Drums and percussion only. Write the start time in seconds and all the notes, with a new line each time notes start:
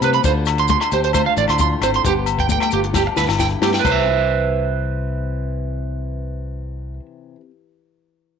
0.02 closed hi-hat, high conga, low agogo, maracas
0.13 closed hi-hat
0.24 kick, closed hi-hat, muted conga, maracas
0.46 cross-stick, closed hi-hat, low agogo, maracas
0.58 closed hi-hat
0.68 kick, closed hi-hat, high conga, maracas
0.81 cross-stick, low agogo
0.92 closed hi-hat, muted conga, maracas
1.04 closed hi-hat
1.13 kick, cross-stick, closed hi-hat, muted conga, high conga, low agogo, maracas
1.37 closed hi-hat, maracas
1.48 cross-stick, closed hi-hat, low agogo
1.58 kick, closed hi-hat, high conga, maracas
1.82 cross-stick, closed hi-hat, low agogo, maracas
1.94 closed hi-hat
2.05 kick, closed hi-hat, muted conga, maracas
2.26 closed hi-hat, muted conga, low agogo, maracas
2.39 kick, closed hi-hat
2.49 kick, closed hi-hat, high conga, low conga, maracas
2.60 cross-stick, low agogo
2.71 closed hi-hat, muted conga, maracas
2.84 closed hi-hat
2.93 kick, snare, muted conga, high conga, low agogo, maracas
3.16 snare, maracas
3.28 snare, low agogo
3.39 kick, snare, maracas
3.62 snare, high conga, low agogo, maracas
3.73 snare
3.85 kick, crash, muted conga, low agogo, maracas